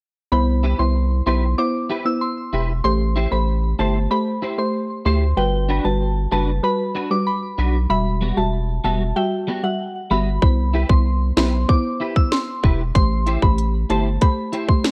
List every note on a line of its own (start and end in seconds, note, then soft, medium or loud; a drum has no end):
0.32 0.74 C2 loud
0.32 0.49 B3 medium
0.32 0.49 E4 medium
0.32 0.49 C5 loud
0.32 0.43 B5 medium
0.63 0.81 E4 medium
0.63 0.81 G4 medium
0.63 0.81 B4 medium
0.79 1.22 C2 medium
0.79 0.96 B3 medium
0.79 0.96 E4 medium
0.79 0.96 C5 medium
0.79 1.02 C6 medium
1.26 1.55 B1 medium
1.26 1.43 B3 medium
1.26 1.44 E4 medium
1.26 1.44 G4 medium
1.26 1.45 B4 medium
1.26 1.44 C5 medium
1.26 1.49 C6 medium
1.58 1.75 B3 medium
1.58 1.75 E4 medium
1.58 1.75 C5 loud
1.58 1.69 D6 medium
1.90 2.07 E4 medium
1.90 2.05 G4 medium
1.90 2.04 B4 loud
2.05 2.22 B3 medium
2.05 2.23 E4 medium
2.05 2.23 C5 medium
2.05 2.17 E6 medium
2.05 muted clean electric guitar stroke soft
2.21 2.66 C6 medium
2.53 2.81 E1 loud
2.53 2.70 E4 medium
2.53 2.71 G4 medium
2.53 2.71 B4 medium
2.84 3.27 A1 loud
2.84 3.01 A3 loud
2.84 3.01 G4 medium
2.84 3.02 C5 loud
2.84 3.07 C6 loud
3.16 3.33 E4 medium
3.16 3.34 G4 loud
3.16 3.34 C5 loud
3.31 3.74 A1 loud
3.31 3.49 A3 medium
3.31 3.49 G4 medium
3.31 3.49 C5 medium
3.31 3.43 B5 medium
3.79 4.08 G1 loud
3.79 3.96 A3 medium
3.79 3.97 E4 medium
3.79 3.96 G4 medium
3.79 3.97 G4 medium
3.79 3.96 C5 medium
3.79 3.97 C5 medium
3.79 3.91 A5 medium
4.11 4.28 A3 medium
4.11 4.28 G4 medium
4.11 4.28 C5 loud
4.11 4.22 B5 medium
4.42 4.60 E4 medium
4.42 4.58 G4 medium
4.42 4.57 C5 medium
4.58 4.75 A3 medium
4.58 4.75 G4 medium
4.58 4.75 C5 medium
4.58 4.70 C6 medium
4.58 muted clean electric guitar stroke soft
5.05 5.34 D2 loud
5.05 5.22 A3 medium
5.05 5.23 E4 medium
5.05 5.23 G4 medium
5.05 5.23 C5 medium
5.05 5.24 C5 medium
5.05 5.17 C6 medium
5.37 5.80 G1 loud
5.37 5.54 G3 medium
5.37 5.54 F#4 medium
5.37 5.54 B4 loud
5.37 5.49 G5 loud
5.68 5.86 D4 medium
5.68 5.86 F#4 medium
5.68 5.87 B4 loud
5.84 6.27 G1 loud
5.84 6.01 G3 medium
5.84 6.01 F#4 medium
5.84 6.02 B4 medium
5.84 6.07 A5 medium
6.32 6.60 F#1 loud
6.32 6.49 G3 medium
6.32 6.49 D4 medium
6.32 6.49 F#4 medium
6.32 6.50 F#4 medium
6.32 6.49 B4 medium
6.32 6.50 B4 medium
6.32 6.55 A5 medium
6.63 6.80 G3 loud
6.63 6.80 F#4 medium
6.63 6.81 B4 loud
6.63 6.75 B5 medium
6.95 7.12 D4 medium
6.95 7.10 F#4 medium
6.95 7.10 B4 medium
7.10 7.28 G3 medium
7.10 7.28 F#4 medium
7.10 7.28 B4 medium
7.10 7.22 D6 medium
7.10 muted clean electric guitar stroke medium
7.27 7.71 B5 medium
7.58 7.87 B1 medium
7.58 7.76 D4 medium
7.58 7.76 F#4 medium
7.58 7.76 B4 medium
7.89 8.32 E1 loud
7.89 8.07 G3 medium
7.89 8.07 F#4 medium
7.89 8.07 E5 loud
7.89 8.12 B5 loud
8.21 8.39 G3 medium
8.21 8.39 B3 medium
8.21 8.39 F#4 medium
8.37 8.80 E1 medium
8.37 8.54 G3 medium
8.37 8.54 F#4 medium
8.37 8.54 E5 medium
8.37 8.48 A5 medium
8.84 9.13 E1 medium
8.84 9.01 G3 medium
8.84 9.02 G3 medium
8.84 9.02 B3 medium
8.84 9.01 F#4 medium
8.84 9.02 F#4 medium
8.84 9.02 E5 medium
8.84 8.96 A5 medium
9.16 9.33 G3 medium
9.16 9.33 F#4 medium
9.16 9.33 E5 loud
9.16 9.27 G5 medium
9.47 9.65 G3 medium
9.47 9.63 B3 medium
9.47 9.62 F#4 loud
9.63 9.80 G3 medium
9.63 9.80 F#4 medium
9.63 9.81 E5 medium
9.63 9.75 F#5 medium
9.63 muted clean electric guitar stroke medium
10.10 10.39 G1 medium
10.10 10.28 G3 medium
10.10 10.29 B3 medium
10.10 10.28 F#4 medium
10.10 10.29 F#4 medium
10.10 10.28 E5 medium
10.10 10.22 B5 medium
10.42 10.85 C2 loud
10.42 10.59 B3 medium
10.42 10.59 E4 medium
10.42 10.60 C5 loud
10.42 10.54 B5 loud
10.42 kick loud
10.74 10.91 E4 medium
10.74 10.92 G4 loud
10.74 10.92 B4 loud
10.90 11.32 C2 medium
10.90 11.07 B3 medium
10.90 11.07 E4 medium
10.90 11.07 C5 medium
10.90 11.12 C6 medium
10.90 kick loud
11.37 11.65 B1 medium
11.37 11.54 B3 medium
11.37 11.55 E4 medium
11.37 11.54 E4 medium
11.37 11.55 G4 medium
11.37 11.55 B4 loud
11.37 11.54 C5 medium
11.37 11.60 C6 medium
11.37 snare loud
11.68 11.86 B3 medium
11.68 11.86 E4 medium
11.68 11.86 C5 loud
11.68 11.80 D6 medium
11.68 kick medium
12.00 12.18 E4 medium
12.00 12.16 G4 medium
12.00 12.15 B4 medium
12.16 12.33 B3 medium
12.16 12.33 E4 medium
12.16 12.33 C5 medium
12.16 12.27 E6 medium
12.16 muted clean electric guitar stroke soft
12.16 kick medium
12.32 12.76 C6 medium
12.32 snare loud
12.63 12.92 E1 medium
12.63 12.81 E4 medium
12.63 12.81 G4 medium
12.63 12.81 B4 loud
12.63 kick medium
12.95 13.37 A1 loud
12.95 13.12 A3 medium
12.95 13.12 G4 medium
12.95 13.12 C5 loud
12.95 13.18 C6 loud
12.95 kick loud
12.95 closed hi-hat medium
13.26 13.44 E4 medium
13.26 13.44 G4 medium
13.26 13.45 C5 loud
13.26 closed hi-hat medium
13.42 13.85 A1 loud
13.42 13.59 A3 medium
13.42 13.59 G4 medium
13.42 13.60 C5 medium
13.42 13.54 B5 medium
13.42 kick medium
13.58 closed hi-hat medium
13.90 14.18 G1 loud
13.90 14.07 A3 medium
13.90 14.07 E4 medium
13.90 14.07 G4 medium
13.90 14.08 G4 medium
13.90 14.07 C5 medium
13.90 14.08 C5 medium
13.90 14.01 A5 medium
13.90 closed hi-hat medium
14.21 14.38 A3 medium
14.21 14.38 G4 medium
14.21 14.39 C5 loud
14.21 14.33 B5 medium
14.21 kick medium
14.21 closed hi-hat medium
14.53 14.70 E4 medium
14.53 14.68 G4 medium
14.53 14.67 C5 medium
14.53 closed hi-hat soft
14.68 14.86 A3 medium
14.68 14.86 G4 medium
14.68 14.86 C5 medium
14.68 14.80 C6 medium
14.68 muted clean electric guitar stroke soft
14.68 kick medium
14.84 snare loud
14.84 closed hi-hat medium